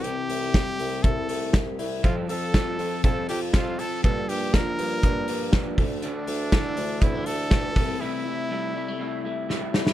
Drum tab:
HH |x-o-x-o-x-o-x-o-|x-o-x-o-x-o-x-o-|x-o-x-o-x-o-x-o-|x-o-x-o-x-o-x-o-|
SD |----o-------o---|----o-------o---|----o-------o---|----o-------o---|
BD |----o---o---o---|o---o---o---o---|o---o---o---o-o-|----o---o---o-o-|

HH |----------------|
SD |------------o-oo|
BD |----------------|